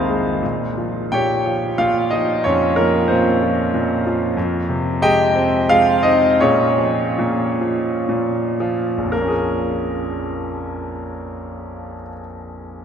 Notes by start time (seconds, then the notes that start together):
Already playing: C2 C3 D#3 G#3 A#3 C4 D#4 F4 G#4 A#4 C5 D#5 F5
0.09 G#3
0.42 A#2
0.78 F3
1.12 A#2 G4 C#5 G5
1.46 F3
1.78 A#2 F4 F5
2.11 F3 D#4 D#5
2.44 F2 C#4 F4 C#5
2.76 F3 A#3 A#4
3.08 A#2 C4 F4 C5
3.42 F3
3.74 A#2
4.07 F3
4.37 F2
4.69 C3
5.02 G#3 G4 D#5 G5
5.35 C4
5.69 G#3 F4 F5
6.03 C4 D#4 D#5
6.40 A#2 C#4 F4 G#4 C#5
6.78 F3
7.18 A#2
7.61 F3
8.09 A#2
8.60 F3
8.98 A#1
9.04 F2
9.10 F3 A#4
9.16 A#3
9.22 C#4
9.28 G#4